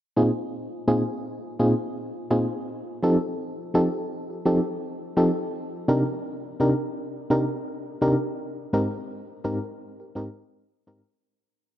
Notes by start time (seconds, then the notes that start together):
0.16 A#2 C4 D#4 F4 G#4
0.88 A#2 C4 D#4 F4 G#4
1.59 A#2 C4 D#4 F4 G#4
2.31 A#2 C4 D#4 F4 G#4
3.03 F3 C4 D#4 G4 A4
3.74 F3 C4 D#4 G4 A4
3.94 G4 A4
4.30 G4 A4
4.45 F3 C4 D#4 G4 A4
5.17 F3 C4 D#4 G4 A4
5.88 C3 D4 D#4 G4 A#4
6.60 C3 D4 D#4 G4 A#4
7.30 C3 D4 D#4 G4 A#4
8.01 C3 D4 D#4 G4 A#4
8.73 G#2 C4 D#4 G4 A#4
9.44 G#2 C4 D#4 G4 A#4
9.64 G4 A#4
10.00 G4 A#4
10.15 G#2 C4 D#4 G4 A#4
10.87 G#2 C4 D#4 G4 A#4